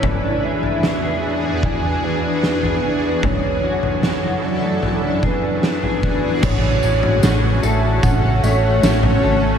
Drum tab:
CC |----------------|----------------|x---------------|
TB |----------------|----------------|x-x-x-x-x-x-x---|
SD |----o-------o---|----o-------o---|----o-------o---|
FT |o--o----o----o--|o--o----o----o--|o--o----o----o--|
BD |o-------o-------|o---------o---o-|o-------o-------|